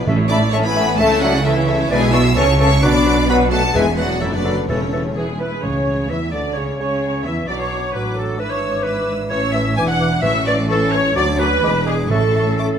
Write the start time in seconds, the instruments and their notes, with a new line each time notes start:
0.06 double bass section A1, cello section A2, timpani A2, bassoon A3, viola section C#4 A4, clarinet E5
0.18 viola section E4 C#5
0.29 bassoon A3, viola section C#4 A4, french horn section D4, violin section D5 D6, flute section B5
0.33 clarinet E5
0.42 viola section E4 C#5
0.52 bassoon A3, viola section C#4 A4, french horn section C#4, violin section C#5 C#6, clarinet E5, flute section A5
0.63 french horn section B3, viola section E4 C#5, violin section B4 B5, flute section G#5
0.76 bassoon A3, viola section C#4 A4, clarinet E5
0.86 viola section E4 C#5
0.97 double bass section C#2, cello section C#3, bassoon A3, french horn section A3, viola section C#4 A4, violin section A4 A5, clarinet E5, flute section E5
1.10 viola section E4 C#5
1.21 french horn section F#3, bassoon A3, viola section C#4 A4, violin section F#4 F#5, flute section D5, clarinet E5
1.32 viola section E4 C#5
1.43 french horn section E3, bassoon A3, viola section C#4 A4, violin section E4 E5, flute section C#5, clarinet E5
1.56 viola section E4 C#5
1.68 bassoon A3, viola section C#4 A4, clarinet E5
1.79 viola section E4 C#5
1.90 double bass section B1, cello section B2, bassoon E3, french horn section G#3, viola section D4 B4, violin section G#4 G#5, clarinet D5, flute section E5
2.01 viola section E4 G#4
2.12 bassoon E3, viola section D4 B4, french horn section E4, clarinet D5, violin section E5 E6, flute section C#6
2.24 viola section E4 G#4
2.35 double bass section C#2, cello section C#3, bassoon E3, french horn section C#4, viola section C#4 A4, clarinet A4, violin section C#5 C#6, flute section A5
2.48 viola section E4 C#5
2.58 bassoon E3, viola section C#4 A4, french horn section C#4, clarinet A4, violin section C#5 C#6, flute section A5
2.70 viola section E4 C#5
2.81 double bass section B1, cello section B2, bassoon F#3, viola section D4 F#4, french horn section D4, clarinet B4, violin section D5 D6, flute section B5
2.92 viola section B3 D4
3.03 bassoon F#3, viola section D4 F#4, clarinet B4
3.16 viola section B3 D4
3.27 bassoon F#3, french horn section B3, viola section D4 F#4, violin section B4 B5, clarinet B4, flute section F#5
3.38 viola section B3 D4
3.49 bassoon F#3, french horn section A3, viola section D4 F#4, violin section A4 A5, clarinet B4, flute section F#5
3.62 viola section B3 D4
3.74 double bass section E1, cello section E2, timpani E2, bassoon E3, french horn section G#3, viola section G#3 E4, violin section G#4 G#5, clarinet B4, flute section E5
3.85 viola section B3 G#4
3.97 bassoon E3, french horn section F#3, viola section G#3 E4, violin section F#4 F#5, clarinet B4, flute section D5
4.09 viola section B3 G#4
4.20 double bass section F#1, cello section F#2, french horn section E3, bassoon F#3, viola section F#3 D4, violin section E4 E5, clarinet A4, flute section C#5
4.31 french horn section D3, viola section A3 F#4, violin section D4 D5, flute section B4
4.45 viola section F#3 D4, bassoon F#3, clarinet A4
4.56 viola section A3 F#4
4.67 double bass section E1, cello section E2, timpani E2, french horn section C#3, bassoon E3, violin section C#4 C#5, viola section C#4 E4, flute section A4, clarinet A4
4.80 viola section A3 C#4
4.92 bassoon E3, viola section C#4 E4, clarinet A4
5.04 viola section A3 C#4
5.15 bassoon E3, viola section B3 E4 G#4, violin section G#4, clarinet G#4
5.29 viola section G#3 G#4
5.39 bassoon E3, viola section B3 E4 B4, violin section B4, clarinet B4
5.52 viola section G#3 G#4
5.62 double bass section C#2, timpani A2, cello section C#3, bassoon C#3, french horn section C#4, flute section C#5, violin section C#5, clarinet C#5, viola section C#5
6.09 double bass section E2, cello section E3, bassoon E3, french horn section E4, viola section E5, flute section E5, violin section E5, clarinet E5
6.31 double bass section D2, cello section D3, bassoon D3, french horn section D4, violin section D5, clarinet D5, flute section D5, viola section D5
6.53 double bass section C#2, cello section C#3, bassoon C#3, clarinet C#5, violin section C#5, flute section C#5, viola section C#5
6.57 french horn section C#4, violin section C#5
6.78 double bass section C#2, cello section C#3, bassoon C#3, french horn section C#4, clarinet C#5, viola section C#5, flute section C#5, violin section C#5
7.23 double bass section E2, cello section E3, bassoon E3, french horn section E4, violin section E5, viola section E5, clarinet E5, flute section E5
7.46 double bass section B1, cello section B2, bassoon F#3, french horn section F#3 D4, violin section D5 D6, viola section D5, clarinet D5, flute section D6
7.59 viola section C#5, violin section C#5, clarinet C#5
7.93 double bass section A1, cello section A2, bassoon F#3, clarinet B4, viola section B4, violin section B4 D6, flute section D6
8.17 viola section A4, violin section A4, clarinet A4
8.38 double bass section G#1, cello section G#2, bassoon E3, french horn section E3, viola section B4, violin section B4 E6, clarinet B4, flute section D6
8.51 clarinet C#5, viola section C#5, violin section C#5
8.84 bassoon E3, clarinet B4, viola section B4, violin section B4 E6, flute section D6
9.30 double bass section A1, cello section A2, bassoon E3, french horn section E3 C#4, viola section C#5, clarinet C#5, violin section C#5 E6, flute section C#6
9.52 bassoon E3, violin section E5, clarinet E5, viola section E5, flute section C#6
9.76 double bass section E1, cello section E2, french horn section E3 D4, bassoon E3, violin section G#5 D6, viola section G#5, clarinet G#5, flute section D6
9.88 clarinet F#5, violin section F#5, viola section F#5
10.00 bassoon E3, flute section D6
10.22 double bass section A1, cello section A2, timpani A2, bassoon E3, french horn section E3 C#4, clarinet E5, violin section E5 C#6, viola section E5, flute section C#6
10.46 bassoon E3, viola section D5, clarinet D5, violin section D5, flute section C#6
10.69 french horn section E3 C#4, bassoon E3, violin section A4 C#6, viola section A4, clarinet A4, flute section C#6
10.92 bassoon E3, clarinet C#5, violin section C#5, viola section C#5, flute section C#6
11.14 cello section D2, double bass section D2, french horn section F#3 D4, bassoon F#3, clarinet D5, violin section D5 D6, viola section D5, flute section D6
11.39 bassoon F#3, clarinet B4, viola section B4, violin section B4, flute section D6
11.62 double bass section E1, cello section E2, french horn section G#3 D4, bassoon G#3, flute section D6, violin section D6
11.86 bassoon G#3, violin section G#4, clarinet G#4, viola section G#4, flute section D6
12.09 double bass section A1, cello section A2, timpani A2, french horn section A3 C#4, bassoon A3, violin section A4 C#6, viola section A4, clarinet A4, flute section C#6
12.35 bassoon A3, flute section C#6
12.58 bassoon A3, flute section C#6, violin section D6